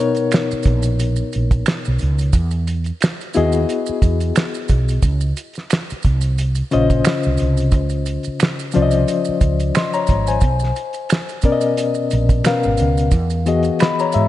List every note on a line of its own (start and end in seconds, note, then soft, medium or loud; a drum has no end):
0.00 0.38 B2 medium
0.00 0.39 B3 medium
0.00 0.39 D#4 medium
0.00 0.39 A#4 medium
0.00 0.39 C#5 medium
0.15 closed hi-hat soft
0.15 maracas soft
0.31 finger snap medium
0.31 snare loud
0.31 closed hi-hat medium
0.31 maracas medium
0.51 muted fretless electric bass stroke soft
0.51 maracas soft
0.63 1.22 A#1 medium
0.63 kick medium
0.63 closed hi-hat medium
0.63 maracas soft
0.83 closed hi-hat soft
0.83 maracas medium
0.99 closed hi-hat medium
0.99 maracas medium
1.16 maracas soft
1.32 1.62 A#1 medium
1.32 closed hi-hat medium
1.32 maracas soft
1.51 kick medium
1.51 closed hi-hat soft
1.51 maracas soft
1.66 finger snap medium
1.66 snare loud
1.66 closed hi-hat medium
1.66 maracas medium
1.85 1.99 B1 medium
1.85 maracas soft
1.99 2.29 C#2 medium
1.99 closed hi-hat medium
1.99 maracas soft
2.19 closed hi-hat soft
2.19 maracas soft
2.33 2.90 E2 loud
2.33 kick medium
2.33 closed hi-hat medium
2.33 maracas medium
2.51 closed hi-hat soft
2.51 maracas soft
2.67 closed hi-hat medium
2.67 maracas medium
2.84 closed hi-hat soft
2.84 maracas soft
3.01 finger snap medium
3.01 snare loud
3.01 closed hi-hat medium
3.01 maracas medium
3.21 closed hi-hat soft
3.21 maracas soft
3.34 3.64 D#2 medium
3.34 4.30 B3 medium
3.34 4.30 E4 medium
3.34 4.30 F#4 medium
3.34 4.31 G#4 medium
3.34 4.31 D#5 medium
3.34 closed hi-hat medium
3.34 maracas soft
3.52 closed hi-hat soft
3.52 maracas medium
3.69 closed hi-hat medium
3.69 maracas medium
3.86 muted fretless electric bass stroke soft
3.86 maracas soft
4.02 4.31 E2 medium
4.02 kick medium
4.02 closed hi-hat medium
4.02 maracas soft
4.20 closed hi-hat medium
4.20 maracas soft
4.35 finger snap medium
4.35 snare loud
4.35 closed hi-hat medium
4.35 maracas medium
4.54 maracas soft
4.68 4.98 B1 medium
4.68 kick medium
4.68 closed hi-hat medium
4.68 maracas soft
4.88 closed hi-hat soft
4.88 maracas soft
5.02 5.31 C#2 loud
5.02 kick loud
5.02 closed hi-hat medium
5.02 maracas medium
5.21 maracas soft
5.37 closed hi-hat medium
5.37 maracas soft
5.53 closed hi-hat soft
5.53 maracas soft
5.58 snare soft
5.70 finger snap medium
5.70 snare loud
5.70 closed hi-hat medium
5.70 maracas medium
5.90 muted fretless electric bass stroke soft
5.90 closed hi-hat soft
5.90 maracas soft
6.02 6.61 C2 medium
6.02 kick medium
6.02 closed hi-hat medium
6.02 maracas soft
6.21 closed hi-hat soft
6.21 maracas medium
6.38 closed hi-hat medium
6.38 maracas medium
6.55 closed hi-hat soft
6.55 maracas soft
6.71 7.01 A#1 medium
6.71 6.96 C#3 medium
6.71 6.96 C#4 medium
6.71 6.97 F4 medium
6.71 6.97 C5 medium
6.71 6.97 D#5 loud
6.71 closed hi-hat medium
6.71 maracas soft
6.90 kick medium
6.90 closed hi-hat soft
6.90 maracas soft
7.05 finger snap medium
7.05 snare loud
7.05 closed hi-hat medium
7.05 maracas medium
7.23 7.38 C2 medium
7.23 maracas soft
7.37 closed hi-hat medium
7.37 maracas soft
7.41 7.73 C2 medium
7.57 closed hi-hat soft
7.57 maracas soft
7.71 8.17 C#2 loud
7.71 kick medium
7.71 closed hi-hat medium
7.71 maracas medium
7.89 closed hi-hat soft
7.89 maracas soft
8.06 closed hi-hat medium
8.06 maracas soft
8.23 muted fretless electric bass stroke soft
8.23 closed hi-hat soft
8.23 maracas soft
8.40 finger snap medium
8.40 snare loud
8.40 closed hi-hat medium
8.40 maracas medium
8.59 closed hi-hat soft
8.59 maracas soft
8.71 9.22 F3 medium
8.71 9.23 C#4 medium
8.71 9.23 F4 medium
8.71 9.23 C5 medium
8.71 closed hi-hat medium
8.71 maracas soft
8.76 9.03 C2 medium
8.76 8.82 D5 medium
8.82 9.27 D#5 medium
8.91 closed hi-hat soft
8.91 maracas medium
9.08 closed hi-hat medium
9.08 maracas medium
9.25 muted fretless electric bass stroke soft
9.25 maracas soft
9.41 9.70 C#2 medium
9.41 kick medium
9.41 closed hi-hat medium
9.41 maracas soft
9.59 closed hi-hat medium
9.59 maracas soft
9.75 9.94 D#5 medium
9.75 9.93 C6 medium
9.75 finger snap medium
9.75 snare medium
9.75 closed hi-hat medium
9.75 maracas medium
9.93 10.26 C#5 medium
9.93 10.26 A#5 medium
9.93 closed hi-hat soft
9.93 maracas soft
10.07 10.37 G#1 medium
10.07 kick medium
10.07 closed hi-hat medium
10.07 maracas soft
10.27 10.60 C5 soft
10.27 10.60 G#5 medium
10.27 closed hi-hat soft
10.27 maracas soft
10.41 10.71 B1 loud
10.41 kick loud
10.41 closed hi-hat medium
10.41 maracas medium
10.59 snare soft
10.59 maracas soft
10.76 closed hi-hat medium
10.76 maracas soft
10.93 closed hi-hat soft
10.93 maracas soft
11.09 finger snap medium
11.09 snare loud
11.09 closed hi-hat medium
11.09 maracas medium
11.29 closed hi-hat soft
11.29 maracas soft
11.42 12.38 B2 medium
11.42 12.39 B3 medium
11.42 12.39 C#4 medium
11.42 12.39 A#4 medium
11.42 11.52 D5 medium
11.42 kick loud
11.42 closed hi-hat medium
11.42 maracas medium
11.52 12.43 D#5 medium
11.61 closed hi-hat soft
11.61 maracas medium
11.77 closed hi-hat medium
11.77 maracas medium
11.95 maracas soft
12.11 12.40 A#1 medium
12.11 closed hi-hat medium
12.11 maracas soft
12.29 kick medium
12.29 closed hi-hat medium
12.29 maracas soft
12.44 12.69 B2 medium
12.44 12.69 B3 medium
12.44 12.70 C#4 medium
12.44 12.70 A#4 medium
12.44 12.70 F5 medium
12.44 finger snap medium
12.44 snare loud
12.44 closed hi-hat medium
12.44 maracas medium
12.63 12.77 G#1 medium
12.63 maracas soft
12.77 13.08 C#2 medium
12.77 closed hi-hat medium
12.77 maracas soft
12.97 closed hi-hat soft
12.97 maracas soft
13.11 13.69 E2 loud
13.11 kick medium
13.11 closed hi-hat medium
13.11 maracas medium
13.30 closed hi-hat soft
13.30 maracas soft
13.46 14.28 E3 medium
13.46 14.28 B3 medium
13.46 14.28 F#4 medium
13.46 14.28 G#4 medium
13.46 13.80 D#5 medium
13.46 closed hi-hat medium
13.46 maracas soft
13.63 closed hi-hat soft
13.63 maracas soft
13.79 13.98 D#5 soft
13.79 13.98 B5 medium
13.79 finger snap medium
13.79 snare loud
13.79 closed hi-hat medium
13.79 maracas medium
13.99 14.28 C#5 medium
13.99 14.28 A#5 medium
13.99 closed hi-hat soft
13.99 maracas soft
14.12 14.28 G#2 medium
14.12 14.28 E5 medium
14.12 closed hi-hat medium
14.12 maracas soft